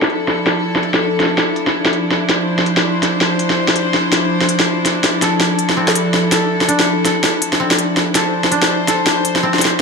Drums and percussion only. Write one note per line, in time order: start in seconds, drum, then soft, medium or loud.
0.02 snare medium
0.10 closed hi-hat medium
0.28 snare medium
0.47 snare medium
0.47 closed hi-hat medium
0.76 snare soft
0.83 closed hi-hat medium
0.94 snare medium
1.20 snare soft
1.20 closed hi-hat medium
1.23 snare soft
1.26 snare soft
1.38 snare medium
1.56 closed hi-hat medium
1.67 snare soft
1.85 snare medium
1.93 closed hi-hat medium
2.11 snare soft
2.29 snare medium
2.29 closed hi-hat medium
2.59 snare soft
2.66 closed hi-hat medium
2.77 snare medium
3.03 snare soft
3.03 closed hi-hat medium
3.21 snare medium
3.39 closed hi-hat medium
3.50 snare soft
3.68 snare medium
3.76 closed hi-hat medium
3.94 snare soft
4.12 snare medium
4.12 closed hi-hat medium
4.41 snare soft
4.49 closed hi-hat medium
4.59 snare medium
4.85 snare soft
4.85 closed hi-hat medium
5.04 snare medium
5.04 closed hi-hat soft
5.22 snare soft
5.22 closed hi-hat medium
5.40 snare medium
5.59 closed hi-hat medium
5.69 snare soft
5.88 snare medium
5.95 closed hi-hat medium
6.14 snare soft
6.32 snare medium
6.32 closed hi-hat medium
6.61 snare soft
6.69 closed hi-hat medium
6.79 snare medium
7.05 snare soft
7.05 closed hi-hat medium
7.24 snare medium
7.42 closed hi-hat medium
7.53 snare soft
7.71 snare medium
7.79 closed hi-hat medium
7.97 snare soft
8.15 snare medium
8.15 closed hi-hat medium
8.44 snare medium
8.52 closed hi-hat medium
8.62 snare medium
8.88 snare medium
8.88 closed hi-hat medium
9.07 snare medium
9.25 closed hi-hat medium
9.36 snare medium
9.54 snare soft
9.59 snare soft
9.59 closed hi-hat medium
9.65 snare medium